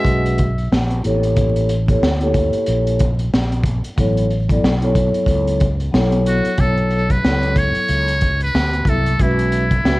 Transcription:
Already playing: vibraphone G#3 C#4 F#4 B4 F#5, trombone G#3, muted trumpet E5
0.05 fretless electric bass B1, kick, closed hi-hat
0.26 closed hi-hat
0.38 kick, closed hi-hat
0.58 closed hi-hat
0.72 fretless electric bass A#1, snare
0.90 closed hi-hat
1.02 fretless electric bass A1, vibraphone A#3 E4 G4 A4, closed hi-hat
1.07 vibraphone C#5
1.23 closed hi-hat
1.36 kick, closed hi-hat
1.56 closed hi-hat
1.69 closed hi-hat
1.86 vibraphone A#3 E4 G4 A4 C#5, kick, closed hi-hat
2.02 fretless electric bass D2, snare
2.19 vibraphone A#3 E4 G4 A4 C#5, closed hi-hat
2.34 kick, closed hi-hat
2.53 muted fretless electric bass stroke, closed hi-hat
2.66 fretless electric bass A#1, closed hi-hat
2.87 closed hi-hat
2.99 kick, closed hi-hat
3.19 closed hi-hat
3.33 fretless electric bass A#1, snare
3.52 closed hi-hat
3.63 kick, closed hi-hat
3.84 muted fretless electric bass stroke, closed hi-hat
3.96 fretless electric bass A1, vibraphone F#3 B3 E4 A4 C#5, kick, closed hi-hat
4.17 closed hi-hat
4.30 closed hi-hat
4.48 vibraphone F#3 B3 E4 A4 D5, kick, closed hi-hat
4.63 fretless electric bass B1, snare
4.81 vibraphone B3 E4 A4 C#5, closed hi-hat
4.87 vibraphone F#3
4.95 kick, closed hi-hat
5.14 closed hi-hat
5.26 fretless electric bass C#2, kick, closed hi-hat
5.47 closed hi-hat
5.60 kick, closed hi-hat
5.80 closed hi-hat
5.91 fretless electric bass B1, vibraphone F#3 B3 E4 A4, snare
5.95 vibraphone C#5
6.12 closed hi-hat
6.26 muted trumpet F#4, closed hi-hat
6.45 closed hi-hat
6.58 fretless electric bass B1, vibraphone B3 E4 A4 C#5, muted trumpet A4, kick, closed hi-hat
6.78 closed hi-hat
6.91 closed hi-hat
7.10 muted trumpet B4, kick, closed hi-hat
7.21 fretless electric bass C#2, vibraphone F#3 B3 E4 A4, snare
7.25 vibraphone C#5
7.43 closed hi-hat
7.56 muted trumpet C#5, kick, closed hi-hat
7.75 muted fretless electric bass stroke, closed hi-hat
7.89 fretless electric bass C#2, closed hi-hat
8.08 closed hi-hat
8.21 kick, closed hi-hat
8.40 muted trumpet B4, closed hi-hat
8.55 fretless electric bass D2, snare
8.73 closed hi-hat
8.85 fretless electric bass C2, vibraphone F#3 B3 E4 A4, kick, closed hi-hat
8.89 muted trumpet A4, vibraphone E5
9.06 closed hi-hat
9.18 fretless electric bass B1, vibraphone G#3 C#4 F#4 B4, muted trumpet E4, kick, closed hi-hat
9.22 vibraphone E5
9.39 closed hi-hat
9.52 closed hi-hat
9.71 kick, closed hi-hat
9.82 fretless electric bass C#2, vibraphone G#3 C#4 F#4 B4 E5, snare

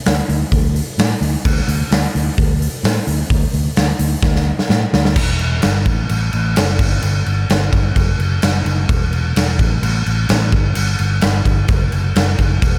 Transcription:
0.06 fingered electric bass D2, snare, open hi-hat
0.29 fingered electric bass D2, open hi-hat
0.52 fingered electric bass D2, kick, open hi-hat
0.76 open hi-hat
0.98 fingered electric bass A2, snare, open hi-hat
1.21 fingered electric bass D2, open hi-hat
1.45 fingered electric bass D2, kick, crash
1.58 snare
1.68 fingered electric bass D2, open hi-hat
1.91 fingered electric bass D2, snare, open hi-hat
2.15 fingered electric bass D2, open hi-hat
2.38 fingered electric bass D2, kick, open hi-hat
2.62 open hi-hat
2.83 fingered electric bass A2, snare, open hi-hat
3.07 fingered electric bass D2, open hi-hat
3.30 fingered electric bass D2, kick, open hi-hat
3.54 fingered electric bass D2, open hi-hat
3.76 fingered electric bass D2, snare, open hi-hat
3.99 fingered electric bass D2, open hi-hat
4.22 fingered electric bass D2, kick, snare
4.36 snare
4.59 snare
4.69 fingered electric bass A2, snare
4.93 fingered electric bass D2, snare
5.05 snare
5.16 fingered electric bass E1, kick, crash
5.39 crash
5.62 fingered electric bass G1, snare, crash
5.86 fingered electric bass A1, kick, crash
6.09 fingered electric bass A1, crash
6.33 fingered electric bass A1, crash
6.56 fingered electric bass F#1, snare, crash
6.79 fingered electric bass G1, kick, crash
7.02 fingered electric bass G1, crash
7.26 fingered electric bass G1, crash
7.49 fingered electric bass G1, snare, crash
7.73 fingered electric bass G1, kick, crash
7.96 fingered electric bass F#1, kick, crash
8.19 fingered electric bass F#1, crash
8.42 fingered electric bass F#1, snare, crash
8.65 fingered electric bass F#1, crash
8.89 fingered electric bass E1, kick, crash
9.13 crash
9.36 fingered electric bass E1, snare, crash
9.59 fingered electric bass A1, kick, crash
9.82 fingered electric bass A1, crash
10.06 fingered electric bass A1, crash
10.29 fingered electric bass A1, snare, crash
10.52 fingered electric bass G1, kick, crash
10.75 fingered electric bass G1, crash
10.99 fingered electric bass G1, crash
11.21 fingered electric bass G1, snare, crash
11.45 fingered electric bass G1, kick, crash
11.68 fingered electric bass F#1, kick, crash
11.92 fingered electric bass F#1, crash
12.16 fingered electric bass F#1, snare, crash
12.38 fingered electric bass F#1, kick, crash
12.62 fingered electric bass E1, kick, crash

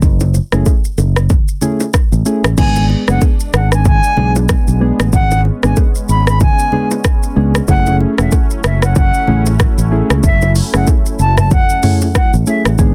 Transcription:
0.02 fingered electric bass F#1, kick, low conga, shaker
0.20 high bongo, low bongo, shaker
0.34 low bongo, shaker
0.52 fingered electric bass F#1, synth keys A3 C#4 E4 G#4, cross-stick, shaker
0.66 kick, high bongo, shaker
0.85 shaker
0.98 fingered electric bass F#1, high bongo, shaker
1.16 cross-stick, shaker
1.30 kick, low bongo, low conga, shaker
1.48 shaker
1.61 synth keys A3 C#4 E4 G#4, low conga, shaker
1.80 low bongo, shaker
1.94 kick, cross-stick, high bongo, shaker
2.12 fingered electric bass A1, shaker
2.25 synth keys A3 C#4 E4 G#4, shaker
2.44 fingered electric bass A1, cross-stick, shaker
2.57 fingered electric bass G#1, synth keys G#3 B3 D4 G#4, analog synth pad G#3 B3 D4, flute G#5, kick, crash, low conga, shaker
2.76 high bongo, low bongo, shaker
2.90 low bongo
3.08 fingered electric bass F#1, synth keys G#3 B3 D4 G#4, flute F#5, cross-stick, shaker
3.21 kick, high bongo, shaker
3.40 shaker
3.53 fingered electric bass G#1, flute F#5, cross-stick, shaker
3.72 flute G#5, cross-stick, shaker
3.85 flute G#5, kick, low bongo, low conga, shaker
4.03 shaker
4.17 fingered electric bass B1, synth keys G#3 B3 D4 G#4, low conga
4.36 low bongo, shaker
4.49 kick, cross-stick, high bongo, shaker
4.68 fingered electric bass B1, shaker
4.81 synth keys G#3 B3 D4 G#4
5.00 fingered electric bass A1, cross-stick, shaker
5.13 fingered electric bass G#1, analog synth pad C#4, flute F#5, kick, low conga, shaker
5.31 high bongo, low bongo, shaker
5.45 low bongo
5.63 fingered electric bass G#1, synth keys G#3 B3 D4 G#4, flute G#5, cross-stick, shaker
5.76 kick, high bongo, shaker
5.95 shaker
6.09 fingered electric bass G#1, flute B5, shaker
6.27 flute B5, cross-stick, shaker
6.40 flute G#5, kick, low bongo, low conga, shaker
6.59 shaker
6.72 synth keys G#3 B3 D4 G#4, low conga
6.91 low bongo, shaker
7.04 kick, cross-stick, high bongo, shaker
7.23 shaker
7.36 fingered electric bass C#2, synth keys G#3 B3 D4 G#4
7.55 cross-stick, shaker
7.68 fingered electric bass F#1, analog synth pad F#3 A3 E4, synth keys A3 C#4 E4 G#4, flute F#5, kick, low conga, shaker
7.86 high bongo, low bongo, shaker
8.00 low bongo
8.18 fingered electric bass E1, synth keys A3 C#4 E4 G#4, flute E5, cross-stick, shaker
8.32 kick, high bongo, shaker
8.51 shaker
8.64 fingered electric bass F#1, flute E5, cross-stick, shaker
8.82 flute F#5, cross-stick, shaker
8.96 flute F#5, kick, low bongo, low conga, shaker
9.14 shaker
9.27 fingered electric bass A1, synth keys A3 C#4 E4 G#4, low conga
9.46 low bongo, shaker
9.60 kick, cross-stick, high bongo, shaker
9.78 fingered electric bass A1, shaker
9.91 synth keys A3 C#4 E4 G#4
10.10 fingered electric bass C#2, cross-stick, shaker
10.23 fingered electric bass F#1, flute E5, kick, low conga, shaker
10.42 high bongo, low bongo, shaker
10.56 open hi-hat, low bongo, shaker
10.74 fingered electric bass F#1, synth keys A3 C#4 E4 G#4, flute F#5, cross-stick, shaker
10.87 kick, high bongo, shaker
11.06 shaker
11.19 fingered electric bass F#1, flute A5, shaker
11.38 flute A5, cross-stick, mid tom, shaker
11.51 flute F#5, kick, low bongo, low conga, shaker
11.69 shaker
11.83 synth keys A3 C#4 E4 G#4, mid tom, open hi-hat, low conga, shaker
12.01 low bongo, shaker
12.15 flute F#5, kick, cross-stick, high bongo, shaker
12.33 fingered electric bass A1, shaker
12.47 synth keys A3 C#4 E4 G#4, flute E5, shaker
12.65 fingered electric bass A1, cross-stick, shaker
12.79 fingered electric bass G#1, analog synth pad G#3 B3 D4, synth keys G#3 B3 D4 G#4, kick, low conga, shaker

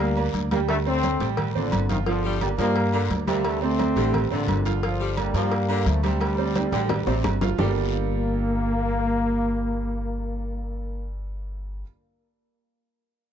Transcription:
Already playing: upright bass D2, trombone section G3 A#3, upright piano A#3 A#4 D5
0.00 low agogo, long guiro
0.16 upright piano A#3 A#4 D5, high conga, low agogo
0.34 upright bass D2, cowbell, high conga, short guiro
0.51 upright piano G3 G4 G5, trombone section G3 A#3, cowbell, high conga, low agogo, short guiro
0.69 trombone section D3 A3, cowbell, high conga, low agogo, long guiro
0.86 trombone section A3 C4, upright piano C4 C5 D5, high conga
1.03 upright piano C4 C5 D5, cowbell, high conga, low agogo, short guiro
1.20 upright bass A1, upright piano G3 G4 G5, cowbell, high conga, short guiro
1.37 cowbell, high conga, low conga, low agogo, long guiro
1.55 trombone section A#2 D3, upright piano C4 C5 D5, high conga, low conga
1.72 upright bass G1, cowbell, high conga, low agogo, short guiro
1.89 trombone section C3 D#3, upright piano F3 F4 F5, cowbell, high conga, short guiro
2.06 trombone section D3 F3, upright piano F3 F4 F5, cowbell, high conga, long guiro
2.24 saxophone section G3, high conga
2.41 trombone section D3 G3, upright piano A#3 A#4 D5, cowbell, high conga, low agogo, short guiro
2.58 upright bass G2, saxophone section F3, trombone section G3 A#3, upright piano A#3 A#4 D5, cowbell, high conga, short guiro
2.76 cowbell, high conga, low agogo, long guiro
2.93 saxophone section D3, upright piano A#3 A#4 D5, high conga, low agogo
3.10 upright bass D2, cowbell, high conga, low timbale, short guiro
3.27 saxophone section C3, upright piano G3 G4 G5, trombone section G3 A#3, cowbell, high conga, low agogo, short guiro
3.44 trombone section D3 A3, cowbell, high conga, low agogo, long guiro
3.62 trombone section A3 C4, upright piano C4 C5 D5, high conga
3.79 upright piano C4 C5 D5, cowbell, high conga, low agogo, short guiro
3.96 upright bass A1, saxophone section D3, upright piano G3 G4 G5, cowbell, high conga, short guiro
4.14 cowbell, high conga, low conga, low agogo, long guiro
4.30 upright bass A1, trombone section A#2 D3, saxophone section C3, upright piano C4 C5 D5
4.48 upright bass G1, cowbell, high conga, low timbale, low agogo, short guiro
4.65 upright piano F3 F4 F5, cowbell, high conga, short guiro
4.83 trombone section D3 F3, upright piano F3 F4 F5, cowbell, high conga, long guiro
5.00 saxophone section G3, high conga
5.17 trombone section D3 G3, upright piano A#3 A#4 D5, cowbell, high conga, low agogo, short guiro
5.34 upright bass G2, saxophone section F3, trombone section G3 A#3, upright piano A#3 A#4 D5, cowbell, high conga, short guiro
5.51 cowbell, high conga, low agogo, long guiro
5.69 saxophone section D3, upright piano A#3 A#4 D5, high conga, low agogo
5.86 upright bass D2, trombone section F3 A3, cowbell, high conga, short guiro
6.03 saxophone section C3, trombone section D3 G3, upright piano G3 G4 G5, cowbell, high conga, low agogo, short guiro
6.21 cowbell, high conga, low agogo, long guiro
6.38 upright piano C4 C5 D5, high conga
6.55 upright piano C4 C5 D5, cowbell, high conga, high timbale, low agogo, short guiro
6.72 upright bass A1, saxophone section D3, upright piano G3 G4 G5, cowbell, high conga, low timbale, short guiro
6.89 cowbell, high bongo, high conga, low conga, high timbale, low agogo, long guiro
7.07 upright bass A1, saxophone section C3, upright piano C4 C5 D5, high bongo, high conga, low timbale
7.24 upright bass G1, cowbell, low bongo, high conga, low timbale, low agogo, short guiro
7.41 upright piano F3 F4 F5, cowbell, low bongo, high conga, low timbale, short guiro
7.58 upright bass G1, upright piano G3 D4 F4 G4 A4 A#4, saxophone section G3, trombone section A#3, low bongo, low conga, low timbale, long guiro

